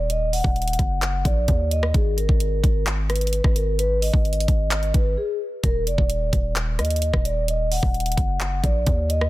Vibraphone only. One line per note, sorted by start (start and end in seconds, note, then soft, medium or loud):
0.10 0.29 D#5 loud
0.33 1.21 F#5 medium
1.25 1.69 D5 medium
1.71 1.90 D#5 medium
1.95 2.13 G#4 loud
2.17 2.82 A#4 loud
3.10 3.53 B4 medium
3.55 3.74 A#4 medium
3.79 3.98 B4 loud
4.02 4.90 D#5 medium
4.95 5.13 B4 medium
5.17 5.36 G#4 medium
5.63 5.82 A#4 loud
5.87 6.52 D5 medium
6.79 7.22 D#5 medium
7.25 7.44 D5 medium
7.49 7.67 D#5 medium
7.71 8.60 F#5 medium
8.64 9.07 D5 medium
9.09 9.28 D#5 medium